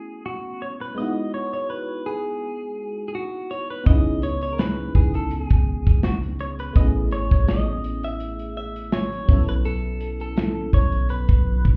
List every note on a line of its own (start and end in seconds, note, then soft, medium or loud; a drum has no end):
0.00 0.56 A3 medium
0.00 0.57 B3 medium
0.00 0.57 C#4 medium
0.00 0.58 E4 medium
0.00 0.59 F#4 medium
0.00 0.25 G#4 medium
0.26 0.63 F#4 medium
0.62 0.67 C#5 loud
0.81 0.97 B4 medium
0.95 3.81 G#3 medium
0.95 3.82 B3 medium
0.95 3.83 D#4 medium
0.95 1.34 D#5 loud
1.00 3.84 E4 medium
1.00 3.85 F#4 medium
1.34 1.52 C#5 medium
1.54 1.69 C#5 medium
1.70 2.07 B4 medium
2.06 3.04 G#4 loud
3.08 3.14 G#4 medium
3.15 3.52 F#4 medium
3.51 3.70 C#5 loud
3.70 3.86 B4 medium
3.84 4.91 C#2 loud
3.84 6.70 B3 medium
3.84 6.71 C#4 medium
3.84 6.72 D#4 medium
3.84 4.23 D#5 loud
3.84 kick loud
3.84 closed hi-hat medium
3.89 6.73 E4 medium
3.89 6.74 G#4 medium
4.22 4.41 C#5 loud
4.22 closed hi-hat medium
4.41 4.53 C#5 medium
4.41 closed hi-hat soft
4.53 4.59 A#4 medium
4.58 4.93 B4 loud
4.58 snare loud
4.58 closed hi-hat medium
4.95 5.48 C#2 loud
4.95 5.13 G#4 medium
4.95 kick medium
4.95 closed hi-hat medium
5.14 5.32 A4 medium
5.14 closed hi-hat medium
5.31 5.43 A4 loud
5.31 closed hi-hat medium
5.43 6.04 G#4 loud
5.50 5.85 C#2 loud
5.50 kick loud
5.50 closed hi-hat medium
5.87 6.72 C#2 loud
5.87 kick medium
5.87 closed hi-hat medium
6.03 6.14 F#4 medium
6.03 snare loud
6.03 closed hi-hat medium
6.23 closed hi-hat soft
6.39 6.46 C#5 loud
6.39 closed hi-hat medium
6.59 6.76 B4 medium
6.59 closed hi-hat medium
6.73 7.13 A1 loud
6.73 9.23 A3 medium
6.73 9.24 B3 medium
6.73 9.25 C#4 medium
6.73 6.86 D#5 loud
6.73 kick loud
6.73 closed hi-hat medium
6.78 9.26 E4 medium
6.78 9.27 G#4 medium
7.11 7.30 G#1 loud
7.11 7.31 C#5 loud
7.11 closed hi-hat medium
7.31 9.25 A1 loud
7.31 7.48 C#5 loud
7.31 kick loud
7.31 closed hi-hat medium
7.48 8.04 D#5 loud
7.48 snare loud
7.48 closed hi-hat medium
7.84 closed hi-hat medium
8.03 8.56 E5 loud
8.03 closed hi-hat medium
8.20 closed hi-hat medium
8.39 closed hi-hat medium
8.57 8.93 E5 loud
8.76 closed hi-hat medium
8.92 9.48 C#5 loud
8.92 snare loud
8.92 closed hi-hat medium
9.12 closed hi-hat soft
9.26 10.69 B1 loud
9.26 11.77 F#3 medium
9.26 11.77 B3 medium
9.26 11.77 C#4 medium
9.26 kick loud
9.26 open hi-hat medium
9.31 11.77 E4 medium
9.31 11.77 A4 medium
9.48 9.54 B4 loud
9.48 closed hi-hat medium
9.65 10.20 A4 loud
9.65 closed hi-hat medium
10.01 closed hi-hat medium
10.20 10.70 A4 medium
10.20 closed hi-hat soft
10.37 snare loud
10.37 closed hi-hat medium
10.73 11.27 B1 loud
10.73 11.10 C#5 loud
10.73 kick medium
10.73 closed hi-hat medium
10.92 closed hi-hat medium
11.09 11.77 B4 loud
11.09 closed hi-hat medium
11.28 11.64 B1 loud
11.28 kick loud
11.28 closed hi-hat medium
11.65 11.77 F#2 loud
11.65 kick medium
11.65 closed hi-hat medium